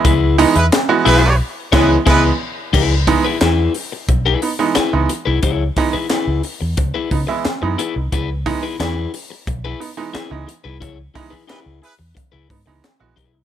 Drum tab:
CC |----------x-x---|x---------------|----------------|----------------|
HH |x-oxx-o---------|--o-x-o-x-o-x-x-|x-o-x-o-x-o-x-x-|x-o-x-o-x-o-x-x-|
CP |----x-----------|----x-------x---|----x-------x---|----x-------x---|
SD |----o-----o-o---|----o-------o---|----o-------o---|----o-------o---|
BD |o---------o-o---|o-o-----o-------|o-o-----o-o-----|o-o-----o-------|

CC |----------------|
HH |x-o-x-o-x-o-x-x-|
CP |----x-------x---|
SD |----o-------o---|
BD |o-o-----o-o---o-|